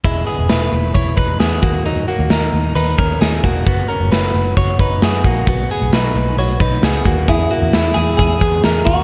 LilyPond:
<<
  \new Staff \with { instrumentName = "Clean electric guitar" } { \time 4/4 \key e \lydian \tempo 4 = 133 r1 | r1 | r1 | r1 |
e'4. gis'8 gis'4. fis'8 | }
  \new Staff \with { instrumentName = "Clean electric guitar" } { \time 4/4 \key e \lydian <gis e'>8 <b gis'>8 <e' b'>4 <e' cis''>8 <dis' b'>8 <b gis'>8 <ais fis'>8 | <fis dis'>8 <ais fis'>8 <dis' ais'>4 <dis' b'>8 <cis' ais'>8 <dis' gis'>8 <ais fis'>8 | <b fis'>8 <cis' ais'>8 <fis' b'>4 <fis' cis''>8 <dis' b'>8 <b gis'>8 <ais fis'>8 | <b fis'>8 <b gis'>8 <dis' b'>4 <fis' cis''>8 <dis' b'>8 <b gis'>8 <ais fis'>8 |
<b gis'>8 <ais fis'>8 <gis e'>4. <b gis'>8 <dis' ais'>4 | }
  \new Staff \with { instrumentName = "Picked electric bass" } { \clef bass \time 4/4 \key e \lydian e,,8 r16 e,,16 e,,8 e,,8 e,,8 e,,8 e,8 dis,8~ | dis,8 r16 dis,16 dis,8 dis,8 dis,8 dis,8 dis,8 e,,8 | fis,,8 r16 fis,,16 fis,,8 fis,,8 fis,,8 fis,,8 fis,8 ais,,8 | b,,8 r16 b,,16 b,,8 b,,8 b,,8 b,,8 cis,8 dis,8 |
e,8 r16 e,16 e,8 e,8 e,8 e,8 e,8 dis,8 | }
  \new DrumStaff \with { instrumentName = "Drums" } \drummode { \time 4/4 <hh bd>8 hh8 <hh sn>8 hh8 <hh bd>8 <hh bd>8 <hh sn>8 <hh bd>8 | hh8 hh8 <hh sn>8 hh8 hh8 <hh bd>8 <hh sn>8 <hh bd>8 | <hh bd>8 hh8 <hh sn>8 hh8 <hh bd>8 <hh bd>8 <hh sn>8 <hh bd>8 | <hh bd>8 hh8 <hh sn>8 hh8 hh8 <hh bd>8 <hh sn>8 <hh bd>8 |
<hh bd>8 hh8 <hh sn>8 hh8 <hh bd>8 <hh bd>8 <hh sn>8 <hh bd>8 | }
>>